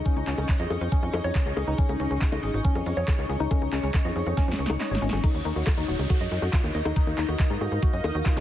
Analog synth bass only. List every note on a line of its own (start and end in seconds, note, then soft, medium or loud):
0.16 0.24 C#2 medium
0.27 0.35 C#2 loud
0.38 0.45 C#2 medium
0.60 0.67 F2 medium
0.70 0.78 F2 loud
0.81 0.89 F2 medium
1.03 1.10 F2 medium
1.14 1.21 F2 loud
1.24 1.32 F2 medium
1.46 1.53 C#2 medium
1.57 1.64 C#2 loud
1.67 1.75 C#2 medium
1.89 1.97 C#2 medium
2.00 2.07 C#2 loud
2.11 2.18 C#2 medium
2.32 2.40 C#2 medium
2.43 2.50 G#1 loud
2.54 2.61 G#1 medium
2.75 2.83 F2 medium
2.86 2.94 F2 loud
2.97 3.04 F2 medium
3.19 3.26 C#2 medium
3.29 3.37 C#2 loud
3.40 3.48 C#2 medium
3.62 3.69 C#2 medium
3.72 3.80 C#2 loud
3.83 3.91 C#2 medium
4.05 4.12 F2 medium
4.16 4.23 F2 medium
4.26 4.34 F2 medium
4.48 4.55 F2 medium
4.59 4.66 C#2 loud
4.70 4.77 C#2 medium
4.91 4.99 G#1 medium
5.02 5.09 G#1 loud
5.13 5.20 G#1 medium
5.34 5.42 D#2 medium
5.45 5.53 D#2 loud
5.56 5.63 D#2 medium
5.78 5.85 D#2 medium
5.88 5.96 D#1 loud
5.99 6.07 C#2 medium
6.21 6.28 F#2 medium
6.31 6.39 F#2 loud
6.42 6.50 F#2 medium
6.64 6.71 D#2 medium
6.75 6.82 D#2 loud
6.85 6.93 D#2 medium
7.07 7.14 D#2 medium
7.18 7.25 D#2 loud
7.29 7.36 D#2 medium
7.50 7.58 G#2 medium
7.61 7.68 G#2 loud
7.72 7.79 G#2 medium
7.93 8.01 F#2 medium
8.04 8.12 D#2 loud
8.15 8.22 D#2 medium
8.37 8.40 C#2 medium